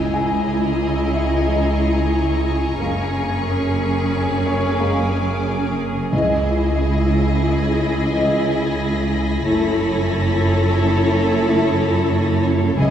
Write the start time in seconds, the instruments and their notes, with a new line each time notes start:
Already playing: double bass section C#2, cello section C#2, viola section E4, violin section G#4 D#5 G#5 A#5, impact
0.14 grand piano G#5
0.81 violin section C#6
1.14 grand piano E4 D#5
1.46 french horn section E3 D#5
2.79 double bass section F#1, cello section F#2, french horn section G#3 A#3, viola section C#4, violin section G#4 A#4
3.69 violin section B5
4.47 grand piano C#5
4.53 violin section D6
4.79 french horn section G#3 A#3
6.12 double bass section C#2, cello section C#2, timpani C#3, french horn section E3 D#5, viola section E4, violin section G#4 D#5 G#5
6.80 violin section A#6
7.47 violin section B5
8.13 french horn section E3 D#5
9.46 double bass section F#1, cello section F#2, french horn section A3 E4, viola section E4, violin section A4 C#5
11.47 french horn section A3 E4
12.79 double bass section C#2, cello section C#2, timpani C#3, french horn section E3 D#5, viola section E4, violin section G#4 D#5 C#6 D#6